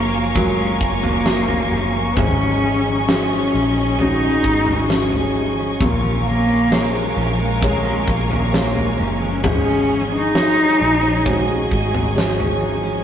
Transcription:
0.00 0.77 F#1 medium
0.00 0.36 F#3 medium
0.00 2.13 F#3 medium
0.00 0.12 A#3 medium
0.00 0.37 A#3 medium
0.00 0.58 C#4 medium
0.00 0.33 F4 soft
0.00 0.36 F4 medium
0.00 0.33 F#4 medium
0.00 0.33 A#4 medium
0.00 2.14 A#4 medium
0.00 2.14 F5 medium
0.00 5.77 G#5 medium
0.00 13.04 C#6 medium
0.13 1.49 A#3 medium
0.35 2.67 F#3 medium
0.35 0.83 G#3 medium
0.35 1.23 F4 soft
0.35 0.81 F4 medium
0.35 1.23 F#4 soft
0.35 1.24 A#4 medium
0.35 kick medium
0.35 floor tom medium
0.59 1.04 C#4 medium
0.81 1.68 F#1 medium
0.81 2.20 A#3 loud
0.81 1.26 F4 medium
0.81 kick medium
1.03 1.73 C#4 medium
1.03 floor tom medium
1.25 2.14 F4 soft
1.25 2.18 F4 medium
1.25 2.14 F#4 soft
1.25 2.14 A#4 medium
1.25 snare loud
1.48 1.95 A#3 medium
1.48 floor tom medium
1.72 2.14 F#1 medium
1.72 2.40 C#4 medium
1.96 2.27 A#3 medium
2.16 3.49 G#1 loud
2.16 3.98 G#2 medium
2.16 5.77 G#3 medium
2.16 3.09 C#4 loud
2.16 5.77 G#4 medium
2.16 2.63 G#4 medium
2.16 5.77 D#5 medium
2.16 kick medium
2.16 floor tom loud
2.41 2.85 D#4 medium
2.64 3.09 G#4 medium
2.86 3.53 D#4 medium
3.07 3.96 C#4 medium
3.07 4.02 C#4 medium
3.07 3.96 F#4 soft
3.07 3.96 G#4 medium
3.07 4.00 G#4 medium
3.07 snare loud
3.31 3.76 C#4 medium
3.54 4.41 A#1 medium
3.54 4.21 D#4 medium
3.77 5.13 C#4 medium
3.98 5.81 G#2 medium
3.98 4.87 C#4 medium
3.98 5.36 D#4 loud
3.98 4.87 F#4 soft
3.98 4.87 G#4 medium
3.98 4.45 G#4 medium
3.98 floor tom medium
4.23 4.67 D#4 medium
4.44 5.77 G#1 medium
4.44 4.90 G#4 medium
4.44 kick medium
4.66 5.35 D#4 medium
4.66 floor tom medium
4.90 5.78 C#4 soft
4.90 5.78 F#4 soft
4.90 5.81 G#4 medium
4.90 5.78 G#4 soft
4.90 snare loud
5.12 5.58 C#4 medium
5.12 floor tom medium
5.36 5.90 D#4 medium
5.58 6.03 C#4 medium
5.80 7.13 A#1 loud
5.80 7.60 A#2 medium
5.80 9.41 A#3 medium
5.80 6.25 F4 medium
5.80 9.40 A#4 medium
5.80 9.41 F5 medium
5.80 9.41 G#5 medium
5.80 kick loud
5.80 floor tom loud
6.03 6.48 C#4 medium
6.26 7.13 A#3 loud
6.26 6.70 F4 medium
6.48 7.16 C#4 medium
6.72 7.60 F4 medium
6.72 7.60 G#4 medium
6.72 7.60 A#4 medium
6.72 7.60 C#5 medium
6.72 snare loud
6.94 7.38 G#3 medium
7.16 8.04 A#1 medium
7.16 7.83 C#4 medium
7.38 8.74 G#3 medium
7.61 9.44 A#2 medium
7.61 8.12 G#3 medium
7.61 8.05 F4 medium
7.61 8.51 G#4 medium
7.61 8.51 A#4 medium
7.61 8.51 C#5 medium
7.61 kick medium
7.61 floor tom medium
7.84 8.29 C#4 medium
8.07 8.95 A#1 medium
8.07 8.32 A#3 medium
8.07 8.51 F4 medium
8.07 kick medium
8.29 9.25 A#3 medium
8.29 8.97 C#4 medium
8.29 floor tom medium
8.52 9.43 F4 medium
8.52 9.41 G#4 soft
8.52 9.41 A#4 soft
8.52 9.42 C#5 medium
8.52 snare loud
8.74 9.19 G#3 medium
8.74 floor tom medium
8.97 9.44 F#1 medium
8.97 9.65 C#4 medium
9.20 10.57 G#3 medium
9.20 9.45 C#4 medium
9.43 10.77 G#1 loud
9.43 11.24 G#2 medium
9.43 13.04 G#3 medium
9.43 10.09 C#4 loud
9.43 9.87 G#4 medium
9.43 13.04 G#4 medium
9.43 13.04 D#5 medium
9.43 13.04 G#5 medium
9.43 kick medium
9.43 floor tom loud
9.66 10.10 D#4 medium
9.88 10.33 G#4 medium
10.11 10.79 D#4 medium
10.16 11.92 D#4 loud
10.34 11.23 F#4 medium
10.34 11.24 G#4 medium
10.34 11.23 G#4 soft
10.34 11.24 C#5 medium
10.34 snare loud
10.57 11.02 C#4 medium
10.80 11.68 A#1 medium
10.80 11.46 D#4 medium
11.03 12.37 C#4 medium
11.25 13.04 G#2 medium
11.25 12.14 F#4 medium
11.25 12.14 G#4 medium
11.25 11.69 G#4 medium
11.25 12.14 C#5 medium
11.25 kick medium
11.25 floor tom medium
11.47 11.91 D#4 medium
11.70 13.04 G#1 loud
11.70 12.14 G#4 medium
11.70 kick medium
11.92 12.59 D#4 medium
11.92 floor tom medium
12.15 13.04 F#4 soft
12.15 13.04 G#4 medium
12.15 13.04 G#4 soft
12.15 13.04 C#5 medium
12.15 snare loud
12.37 12.83 C#4 medium
12.37 floor tom medium
12.61 13.04 D#4 medium
12.83 13.04 C#4 medium

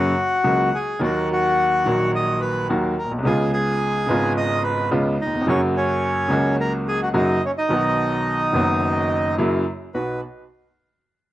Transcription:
0.00 0.12 F#2 medium
0.00 0.12 C#3 medium
0.00 0.12 F#3 medium
0.00 0.12 A#3 medium
0.00 0.12 F#4 medium
0.00 0.70 F#4 medium
0.00 0.78 F#5 loud
0.44 0.69 C#2 medium
0.44 0.69 C#3 medium
0.44 0.68 F#3 medium
0.44 0.69 A#3 medium
0.44 0.69 F#4 medium
0.74 1.00 G#4 medium
0.74 1.01 G#5 medium
0.99 1.81 D#2 medium
0.99 1.81 D#3 medium
0.99 1.81 F#3 medium
0.99 1.82 A#3 medium
0.99 1.28 F#4 medium
1.04 1.83 F#4 medium
1.04 1.29 F#5 loud
1.32 2.11 F#4 medium
1.32 2.11 F#5 loud
1.84 2.66 A#1 medium
1.84 2.66 A#2 medium
1.84 2.65 D#3 medium
1.84 2.66 F#3 medium
1.84 2.66 A#3 medium
1.89 2.67 F#4 medium
2.15 2.40 D#5 medium
2.15 2.41 D#6 loud
2.40 2.67 B4 medium
2.40 2.68 B5 loud
2.69 2.93 D#2 medium
2.69 2.93 D#3 medium
2.69 2.93 F#3 medium
2.69 2.93 A#3 medium
2.69 2.93 F#4 medium
2.99 3.11 A#4 medium
2.99 3.12 A#5 medium
3.04 3.11 A#1 medium
3.11 3.18 B1 medium
3.19 3.25 C2 medium
3.23 4.04 C#2 medium
3.23 3.24 C#3 medium
3.23 4.04 C#3 medium
3.23 4.04 G#3 medium
3.23 4.05 B3 medium
3.23 3.51 G#4 medium
3.23 3.52 G#5 medium
3.27 4.05 F4 medium
3.53 4.33 G#4 medium
3.53 4.33 G#5 loud
4.06 4.88 G#1 medium
4.06 4.88 G#2 medium
4.06 4.87 C#3 medium
4.06 4.88 G#3 medium
4.06 4.88 B3 medium
4.10 4.89 F4 medium
4.37 4.63 D#5 medium
4.37 4.63 D#6 loud
4.64 4.90 B4 medium
4.64 4.90 B5 loud
4.91 5.15 C#2 loud
4.91 5.15 C#3 medium
4.91 5.15 G#3 medium
4.91 5.15 B3 medium
4.91 5.15 F4 medium
5.21 5.46 D#4 medium
5.21 5.46 D#5 loud
5.26 5.33 D#2 medium
5.34 5.41 E2 medium
5.41 5.48 F2 medium
5.46 6.27 F#2 loud
5.46 6.26 C#3 medium
5.46 6.27 F#3 medium
5.46 6.27 A#3 medium
5.46 5.61 C#4 medium
5.46 6.28 F#4 medium
5.46 5.61 C#5 loud
5.77 6.55 C#4 medium
5.77 6.56 C#5 loud
6.30 7.10 C#2 medium
6.30 7.10 C#3 loud
6.30 7.10 F#3 medium
6.30 7.10 A#3 medium
6.30 7.11 F#4 medium
6.60 6.73 A#4 medium
6.60 6.73 A#5 loud
6.88 7.00 G#4 medium
6.88 7.01 G#5 loud
7.03 7.09 F#4 medium
7.03 7.09 F#5 medium
7.14 7.38 F#2 medium
7.14 7.37 C#3 medium
7.14 7.38 F#3 medium
7.14 7.38 A#3 medium
7.14 7.42 D#4 medium
7.14 7.38 F#4 medium
7.14 7.44 D#5 loud
7.46 7.52 C#4 medium
7.46 7.51 C#5 medium
7.58 9.36 D#4 medium
7.58 9.35 D#5 loud
7.69 8.50 B1 medium
7.69 8.50 B2 medium
7.69 8.49 D#3 medium
7.69 8.50 F#3 medium
7.69 8.50 B3 medium
7.73 8.51 F#4 medium
8.52 9.34 F#1 medium
8.52 9.34 F#2 medium
8.52 9.33 D#3 medium
8.52 9.34 F#3 medium
8.52 9.35 B3 medium
8.52 9.35 F#4 medium
9.38 9.63 F#2 medium
9.38 9.62 C#3 medium
9.38 9.63 F#3 loud
9.38 9.63 A#3 medium
9.38 9.63 E4 medium
9.94 10.19 B1 medium
9.94 10.19 B3 medium
9.94 10.19 D#4 soft
9.94 10.19 F#4 medium
9.94 10.21 B4 medium

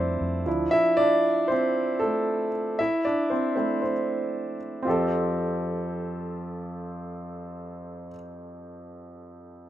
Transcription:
0.00 0.16 F2 medium
0.00 0.48 G3 medium
0.00 0.48 A3 soft
0.00 0.48 C4 medium
0.00 0.47 D4 medium
0.00 0.48 E4 medium
0.00 0.48 F4 medium
0.00 0.48 C5 medium
0.00 0.48 D5 medium
0.00 0.48 E5 medium
0.21 0.46 F2 medium
0.46 0.68 D2 medium
0.46 0.81 F3 soft
0.46 0.81 D4 soft
0.46 0.72 E4 medium
0.71 0.97 E4 medium
0.71 0.98 E5 loud
0.97 1.47 D4 medium
0.97 1.51 D5 medium
1.48 1.99 C4 medium
1.48 1.97 C5 medium
1.99 2.50 A3 medium
1.99 2.49 A4 medium
2.79 3.04 E4 medium
2.79 3.03 E5 medium
3.05 3.30 D4 medium
3.05 3.32 D5 medium
3.30 3.55 C4 medium
3.30 3.54 C5 medium
3.56 3.91 A3 soft
3.56 3.81 C4 soft
3.56 3.92 E4 soft
3.56 3.80 C5 medium
3.82 4.57 C4 soft
3.82 4.56 C5 medium
4.83 8.10 F2 medium
4.83 8.06 C4 medium
4.83 8.09 F4 medium
4.88 8.11 G4 medium
4.88 8.13 A4 medium

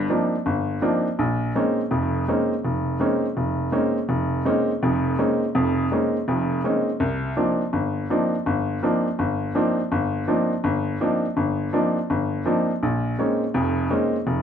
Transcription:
0.09 0.34 F3 soft
0.09 0.35 A#3 soft
0.09 0.35 C4 soft
0.09 0.35 D4 soft
0.09 0.35 D#4 medium
0.46 0.78 G1 medium
0.82 1.07 F3 soft
0.82 1.07 A#3 soft
0.82 1.07 C4 soft
0.82 1.07 D4 soft
0.82 1.07 D#4 medium
1.19 1.50 A#1 medium
1.55 1.80 G#3 soft
1.55 1.80 A#3 soft
1.55 1.80 C4 soft
1.55 1.80 C#4 soft
1.55 1.80 D#4 medium
1.91 2.23 F1 medium
1.91 2.23 F2 medium
2.28 2.53 G#3 soft
2.28 2.53 A#3 soft
2.28 2.53 C4 soft
2.28 2.53 C#4 soft
2.28 2.53 D#4 medium
2.65 2.96 F1 medium
3.00 3.25 G#3 soft
3.00 3.25 A#3 soft
3.00 3.25 C4 soft
3.00 3.25 C#4 soft
3.00 3.25 D#4 medium
3.37 3.68 F1 medium
3.72 3.97 G#3 soft
3.72 3.97 A#3 soft
3.72 3.97 C4 soft
3.72 3.97 C#4 soft
3.72 3.98 D#4 medium
4.09 4.41 F1 medium
4.45 4.70 G#3 soft
4.45 4.70 A#3 soft
4.45 4.70 C4 soft
4.45 4.70 C#4 soft
4.45 4.71 D#4 medium
4.83 5.14 F1 medium
4.83 5.14 F2 medium
5.18 5.43 G#3 soft
5.18 5.43 A#3 soft
5.18 5.43 C4 soft
5.18 5.43 C#4 soft
5.18 5.43 D#4 medium
5.55 5.87 F1 medium
5.55 5.86 F2 medium
5.92 6.16 G#3 medium
5.92 6.16 A#3 soft
5.92 6.16 C4 soft
5.92 6.16 C#4 soft
5.92 6.16 D#4 medium
6.28 6.59 F1 medium
6.28 6.59 F2 medium
6.64 6.89 G#3 soft
6.64 6.88 A#3 soft
6.64 6.89 C4 soft
6.64 6.89 C#4 soft
6.64 6.89 D#4 medium
7.00 7.32 C2 medium
7.36 7.61 F3 soft
7.36 7.61 A#3 soft
7.36 7.61 C4 soft
7.36 7.61 D4 soft
7.36 7.62 D#4 medium
7.73 8.04 G1 medium
8.10 8.34 F3 soft
8.10 8.34 A#3 soft
8.10 8.34 C4 soft
8.10 8.34 D4 soft
8.10 8.35 D#4 medium
8.46 8.77 G1 medium
8.83 9.07 F3 medium
8.83 9.07 A#3 soft
8.83 9.07 C4 soft
8.83 9.07 D4 soft
8.83 9.07 D#4 medium
9.19 9.50 G1 medium
9.55 9.79 F3 medium
9.55 9.79 A#3 soft
9.55 9.79 C4 soft
9.55 9.80 D4 soft
9.55 9.80 D#4 medium
9.92 10.23 G1 medium
10.27 10.52 F3 soft
10.27 10.52 A#3 soft
10.27 10.52 C4 soft
10.27 10.52 D4 soft
10.27 10.52 D#4 medium
10.64 10.95 G1 medium
11.01 11.25 F3 medium
11.01 11.25 A#3 soft
11.01 11.25 C4 soft
11.01 11.25 D4 soft
11.01 11.25 D#4 medium
11.37 11.68 G1 medium
11.73 11.97 F3 soft
11.73 11.97 A#3 soft
11.73 11.98 C4 soft
11.73 11.98 D4 soft
11.73 11.98 D#4 medium
12.10 12.41 G1 medium
12.45 12.70 F3 soft
12.45 12.70 A#3 soft
12.45 12.70 C4 soft
12.45 12.70 D4 soft
12.45 12.71 D#4 medium
12.83 13.14 A#1 medium
13.19 13.43 G#3 soft
13.19 13.43 A#3 soft
13.19 13.43 C4 soft
13.19 13.43 C#4 soft
13.19 13.43 D#4 medium
13.54 13.86 F1 medium
13.54 13.86 F2 medium
13.90 14.15 G#3 medium
13.90 14.15 A#3 soft
13.90 14.15 C4 soft
13.90 14.15 C#4 soft
13.90 14.15 D#4 medium
14.27 14.42 F1 medium

